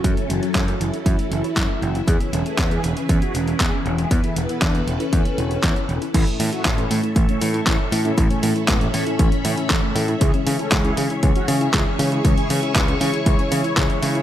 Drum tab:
CC |----------------|----------------|----------------|x---------------|
HH |xxxxxxxxxxxxx-xx|xxxxxxxxxxxxx-xx|xxxxxxxxxxxxxxxx|xxoxxxoxxxoxx-ox|
CP |----x-------x---|----x-------x---|----x-------x---|----x-------x---|
BD |o---o---o---o---|o---o---o---o---|o---o---o---o---|o---o---o---o---|

CC |----------------|----------------|----------------|
HH |xxoxxxoxxxoxx-ox|xxoxxxoxxxoxx-ox|xxoxxxoxxxoxxxox|
CP |----x-------x---|----x-------x---|----x-------x---|
BD |o---o---o---o---|o---o---o---o---|o---o---o---o---|